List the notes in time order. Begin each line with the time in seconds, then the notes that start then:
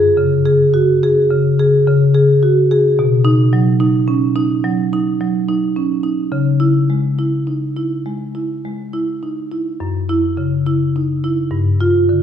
Already playing: F#2 G#4
0.17 C#3
0.46 G#4
0.74 F#4
1.03 G#4
1.31 C#3
1.59 G#4
1.87 C#3
2.15 G#4
2.43 F#4
2.71 G#4
2.99 B2
3.25 D#4
3.53 F#3
3.80 D#4
4.08 C#4
4.36 D#4
4.64 F#3
4.93 D#4
5.21 F#3
5.49 D#4
5.76 C#4
6.03 D#4
6.32 C#3
6.60 E4
6.90 G#3
7.19 E4
7.47 D#4
7.77 E4
8.06 G#3
8.35 E4
8.65 G#3
8.93 E4
9.23 D#4
9.52 E4
9.80 F#2
10.09 E4
10.37 C#3
10.66 E4
10.96 D#4
11.24 E4
11.51 G2
11.81 F4
12.09 D3